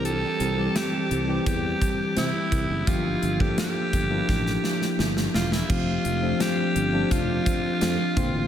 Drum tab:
CC |----------------|----------------|x---------------|
HH |x-x-x-x-x-x-x-x-|x-x-x-x---------|--x-x-x-x-x-x-x-|
SD |----o-------o---|----o---oooooooo|----o-------o---|
BD |--------o-o---o-|o--o--o-o-------|o-------o-o---o-|